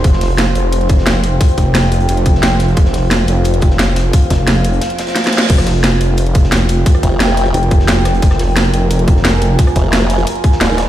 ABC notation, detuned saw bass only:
X:1
M:4/4
L:1/8
Q:1/4=176
K:Fm
V:1 name="Detuned saw bass" clef=bass
F,,,3 F,,,4- F,,, | z F,,,3 F,,,4 | F,,,3 F,,,4- F,,, | z F,,,3 z4 |
F,,,3 F,,,4- F,,, | z4 F,,,4 | F,,,3 F,,,4- F,,, | z8 |]